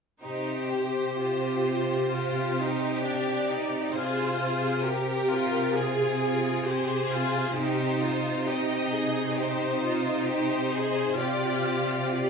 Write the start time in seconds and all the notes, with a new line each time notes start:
0.23 C3 D#4 G4 C5
0.73 G4
1.21 F4
2.15 F4 G4
2.60 D#4
3.05 D4 D5
3.51 D#4
3.95 C3 F4 G#4 C5
4.40 G#4
4.84 G4 A#4
5.33 F4
5.73 F4 G#4
6.22 F4
6.67 G4 G#4 C5
7.13 F4
7.56 C3 D#4 G4 C5
8.02 F4
8.47 D#4 G4 D#5
8.93 G#4
9.38 G4 C5
9.82 F4
10.27 G4 C5
10.74 G#4
11.17 C3 F4 G4 D5
12.12 F4 G4 D5